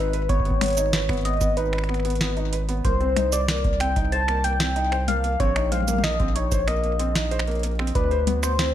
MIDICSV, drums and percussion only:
0, 0, Header, 1, 2, 480
1, 0, Start_track
1, 0, Tempo, 638298
1, 220, Time_signature, 4, 2, 24, 8
1, 6574, End_track
2, 0, Start_track
2, 0, Title_t, "Drums"
2, 101, Note_on_c, 9, 42, 53
2, 176, Note_off_c, 9, 42, 0
2, 220, Note_on_c, 9, 36, 102
2, 221, Note_on_c, 9, 42, 53
2, 295, Note_off_c, 9, 36, 0
2, 296, Note_off_c, 9, 42, 0
2, 300, Note_on_c, 9, 36, 82
2, 341, Note_on_c, 9, 42, 28
2, 375, Note_off_c, 9, 36, 0
2, 380, Note_on_c, 9, 36, 69
2, 416, Note_off_c, 9, 42, 0
2, 455, Note_off_c, 9, 36, 0
2, 461, Note_on_c, 9, 26, 75
2, 461, Note_on_c, 9, 42, 88
2, 461, Note_on_c, 9, 48, 89
2, 478, Note_off_c, 9, 42, 0
2, 478, Note_on_c, 9, 42, 72
2, 495, Note_off_c, 9, 42, 0
2, 495, Note_on_c, 9, 42, 57
2, 512, Note_off_c, 9, 42, 0
2, 512, Note_on_c, 9, 42, 47
2, 529, Note_off_c, 9, 42, 0
2, 529, Note_on_c, 9, 42, 39
2, 536, Note_off_c, 9, 26, 0
2, 536, Note_off_c, 9, 48, 0
2, 547, Note_off_c, 9, 42, 0
2, 547, Note_on_c, 9, 42, 33
2, 564, Note_off_c, 9, 42, 0
2, 564, Note_on_c, 9, 42, 27
2, 581, Note_off_c, 9, 42, 0
2, 581, Note_on_c, 9, 42, 53
2, 581, Note_on_c, 9, 69, 79
2, 656, Note_off_c, 9, 42, 0
2, 656, Note_off_c, 9, 69, 0
2, 700, Note_on_c, 9, 38, 126
2, 700, Note_on_c, 9, 42, 53
2, 776, Note_off_c, 9, 38, 0
2, 776, Note_off_c, 9, 42, 0
2, 820, Note_on_c, 9, 36, 106
2, 821, Note_on_c, 9, 26, 51
2, 821, Note_on_c, 9, 42, 26
2, 851, Note_off_c, 9, 42, 0
2, 851, Note_on_c, 9, 42, 21
2, 880, Note_off_c, 9, 42, 0
2, 880, Note_on_c, 9, 42, 17
2, 895, Note_off_c, 9, 36, 0
2, 896, Note_off_c, 9, 26, 0
2, 911, Note_off_c, 9, 42, 0
2, 911, Note_on_c, 9, 42, 14
2, 941, Note_off_c, 9, 42, 0
2, 941, Note_on_c, 9, 42, 91
2, 1000, Note_off_c, 9, 42, 0
2, 1000, Note_on_c, 9, 42, 8
2, 1030, Note_off_c, 9, 42, 0
2, 1030, Note_on_c, 9, 42, 6
2, 1060, Note_off_c, 9, 42, 0
2, 1060, Note_on_c, 9, 36, 88
2, 1060, Note_on_c, 9, 42, 52
2, 1060, Note_on_c, 9, 69, 62
2, 1135, Note_off_c, 9, 36, 0
2, 1135, Note_off_c, 9, 42, 0
2, 1135, Note_off_c, 9, 69, 0
2, 1180, Note_on_c, 9, 42, 52
2, 1255, Note_off_c, 9, 42, 0
2, 1300, Note_on_c, 9, 26, 48
2, 1300, Note_on_c, 9, 42, 11
2, 1341, Note_off_c, 9, 26, 0
2, 1341, Note_on_c, 9, 26, 38
2, 1375, Note_off_c, 9, 42, 0
2, 1381, Note_off_c, 9, 26, 0
2, 1381, Note_on_c, 9, 26, 32
2, 1381, Note_on_c, 9, 42, 16
2, 1421, Note_off_c, 9, 26, 0
2, 1421, Note_on_c, 9, 26, 26
2, 1456, Note_off_c, 9, 42, 0
2, 1461, Note_off_c, 9, 26, 0
2, 1461, Note_on_c, 9, 26, 22
2, 1461, Note_on_c, 9, 42, 21
2, 1501, Note_off_c, 9, 26, 0
2, 1501, Note_on_c, 9, 26, 17
2, 1536, Note_off_c, 9, 42, 0
2, 1540, Note_on_c, 9, 42, 50
2, 1576, Note_off_c, 9, 26, 0
2, 1580, Note_off_c, 9, 42, 0
2, 1580, Note_on_c, 9, 42, 41
2, 1620, Note_off_c, 9, 42, 0
2, 1620, Note_on_c, 9, 42, 33
2, 1660, Note_off_c, 9, 42, 0
2, 1660, Note_on_c, 9, 38, 121
2, 1660, Note_on_c, 9, 42, 53
2, 1735, Note_off_c, 9, 38, 0
2, 1735, Note_off_c, 9, 42, 0
2, 1780, Note_on_c, 9, 42, 27
2, 1855, Note_off_c, 9, 42, 0
2, 1900, Note_on_c, 9, 42, 92
2, 1975, Note_off_c, 9, 42, 0
2, 2020, Note_on_c, 9, 42, 53
2, 2095, Note_off_c, 9, 42, 0
2, 2140, Note_on_c, 9, 36, 105
2, 2140, Note_on_c, 9, 42, 53
2, 2215, Note_off_c, 9, 36, 0
2, 2215, Note_off_c, 9, 42, 0
2, 2260, Note_on_c, 9, 42, 27
2, 2335, Note_off_c, 9, 42, 0
2, 2380, Note_on_c, 9, 26, 50
2, 2380, Note_on_c, 9, 42, 87
2, 2380, Note_on_c, 9, 48, 92
2, 2455, Note_off_c, 9, 26, 0
2, 2455, Note_off_c, 9, 42, 0
2, 2455, Note_off_c, 9, 48, 0
2, 2500, Note_on_c, 9, 42, 51
2, 2500, Note_on_c, 9, 69, 81
2, 2575, Note_off_c, 9, 42, 0
2, 2575, Note_off_c, 9, 69, 0
2, 2620, Note_on_c, 9, 38, 121
2, 2620, Note_on_c, 9, 42, 51
2, 2695, Note_off_c, 9, 38, 0
2, 2695, Note_off_c, 9, 42, 0
2, 2740, Note_on_c, 9, 36, 107
2, 2740, Note_on_c, 9, 42, 26
2, 2815, Note_off_c, 9, 36, 0
2, 2815, Note_off_c, 9, 42, 0
2, 2859, Note_on_c, 9, 26, 76
2, 2859, Note_on_c, 9, 42, 89
2, 2935, Note_off_c, 9, 26, 0
2, 2935, Note_off_c, 9, 42, 0
2, 2980, Note_on_c, 9, 36, 85
2, 2980, Note_on_c, 9, 42, 50
2, 3055, Note_off_c, 9, 36, 0
2, 3055, Note_off_c, 9, 42, 0
2, 3100, Note_on_c, 9, 42, 51
2, 3175, Note_off_c, 9, 42, 0
2, 3220, Note_on_c, 9, 26, 51
2, 3220, Note_on_c, 9, 42, 26
2, 3295, Note_off_c, 9, 26, 0
2, 3295, Note_off_c, 9, 42, 0
2, 3340, Note_on_c, 9, 42, 88
2, 3415, Note_off_c, 9, 42, 0
2, 3460, Note_on_c, 9, 38, 120
2, 3460, Note_on_c, 9, 42, 50
2, 3535, Note_off_c, 9, 38, 0
2, 3535, Note_off_c, 9, 42, 0
2, 3580, Note_on_c, 9, 42, 51
2, 3655, Note_off_c, 9, 42, 0
2, 3700, Note_on_c, 9, 26, 52
2, 3700, Note_on_c, 9, 42, 25
2, 3775, Note_off_c, 9, 26, 0
2, 3775, Note_off_c, 9, 42, 0
2, 3820, Note_on_c, 9, 42, 90
2, 3820, Note_on_c, 9, 48, 95
2, 3895, Note_off_c, 9, 42, 0
2, 3895, Note_off_c, 9, 48, 0
2, 3940, Note_on_c, 9, 42, 51
2, 4015, Note_off_c, 9, 42, 0
2, 4060, Note_on_c, 9, 36, 102
2, 4060, Note_on_c, 9, 42, 52
2, 4135, Note_off_c, 9, 36, 0
2, 4135, Note_off_c, 9, 42, 0
2, 4181, Note_on_c, 9, 26, 79
2, 4181, Note_on_c, 9, 42, 26
2, 4256, Note_off_c, 9, 26, 0
2, 4256, Note_off_c, 9, 42, 0
2, 4300, Note_on_c, 9, 42, 88
2, 4300, Note_on_c, 9, 48, 45
2, 4340, Note_off_c, 9, 48, 0
2, 4340, Note_on_c, 9, 48, 52
2, 4375, Note_off_c, 9, 42, 0
2, 4380, Note_off_c, 9, 48, 0
2, 4380, Note_on_c, 9, 48, 59
2, 4420, Note_off_c, 9, 48, 0
2, 4420, Note_on_c, 9, 42, 51
2, 4420, Note_on_c, 9, 48, 69
2, 4420, Note_on_c, 9, 69, 84
2, 4460, Note_off_c, 9, 48, 0
2, 4460, Note_on_c, 9, 48, 77
2, 4496, Note_off_c, 9, 42, 0
2, 4496, Note_off_c, 9, 69, 0
2, 4500, Note_off_c, 9, 48, 0
2, 4500, Note_on_c, 9, 48, 87
2, 4540, Note_on_c, 9, 26, 53
2, 4540, Note_on_c, 9, 38, 117
2, 4540, Note_on_c, 9, 42, 50
2, 4575, Note_off_c, 9, 48, 0
2, 4615, Note_off_c, 9, 26, 0
2, 4615, Note_off_c, 9, 38, 0
2, 4615, Note_off_c, 9, 42, 0
2, 4660, Note_on_c, 9, 36, 102
2, 4660, Note_on_c, 9, 42, 26
2, 4735, Note_off_c, 9, 36, 0
2, 4735, Note_off_c, 9, 42, 0
2, 4780, Note_on_c, 9, 42, 90
2, 4855, Note_off_c, 9, 42, 0
2, 4900, Note_on_c, 9, 36, 82
2, 4900, Note_on_c, 9, 42, 51
2, 4900, Note_on_c, 9, 69, 66
2, 4975, Note_off_c, 9, 36, 0
2, 4976, Note_off_c, 9, 42, 0
2, 4976, Note_off_c, 9, 69, 0
2, 5020, Note_on_c, 9, 26, 53
2, 5020, Note_on_c, 9, 42, 51
2, 5095, Note_off_c, 9, 26, 0
2, 5095, Note_off_c, 9, 42, 0
2, 5140, Note_on_c, 9, 42, 25
2, 5216, Note_off_c, 9, 42, 0
2, 5260, Note_on_c, 9, 42, 88
2, 5335, Note_off_c, 9, 42, 0
2, 5380, Note_on_c, 9, 38, 116
2, 5380, Note_on_c, 9, 42, 51
2, 5455, Note_off_c, 9, 38, 0
2, 5455, Note_off_c, 9, 42, 0
2, 5500, Note_on_c, 9, 42, 54
2, 5560, Note_on_c, 9, 26, 82
2, 5575, Note_off_c, 9, 42, 0
2, 5620, Note_on_c, 9, 42, 24
2, 5635, Note_off_c, 9, 26, 0
2, 5651, Note_off_c, 9, 42, 0
2, 5651, Note_on_c, 9, 42, 20
2, 5680, Note_off_c, 9, 42, 0
2, 5680, Note_on_c, 9, 42, 16
2, 5711, Note_off_c, 9, 42, 0
2, 5711, Note_on_c, 9, 42, 14
2, 5740, Note_off_c, 9, 42, 0
2, 5740, Note_on_c, 9, 42, 90
2, 5800, Note_off_c, 9, 42, 0
2, 5800, Note_on_c, 9, 42, 7
2, 5830, Note_off_c, 9, 42, 0
2, 5830, Note_on_c, 9, 42, 6
2, 5860, Note_on_c, 9, 26, 53
2, 5906, Note_off_c, 9, 42, 0
2, 5920, Note_on_c, 9, 42, 52
2, 5935, Note_off_c, 9, 26, 0
2, 5980, Note_off_c, 9, 42, 0
2, 5980, Note_on_c, 9, 36, 101
2, 5980, Note_on_c, 9, 42, 53
2, 6055, Note_off_c, 9, 36, 0
2, 6055, Note_off_c, 9, 42, 0
2, 6100, Note_on_c, 9, 42, 26
2, 6175, Note_off_c, 9, 42, 0
2, 6220, Note_on_c, 9, 42, 92
2, 6220, Note_on_c, 9, 48, 98
2, 6295, Note_off_c, 9, 42, 0
2, 6295, Note_off_c, 9, 48, 0
2, 6340, Note_on_c, 9, 26, 54
2, 6340, Note_on_c, 9, 42, 53
2, 6340, Note_on_c, 9, 69, 85
2, 6415, Note_off_c, 9, 26, 0
2, 6415, Note_off_c, 9, 42, 0
2, 6415, Note_off_c, 9, 69, 0
2, 6460, Note_on_c, 9, 38, 114
2, 6460, Note_on_c, 9, 42, 53
2, 6535, Note_off_c, 9, 38, 0
2, 6535, Note_off_c, 9, 42, 0
2, 6574, End_track
0, 0, End_of_file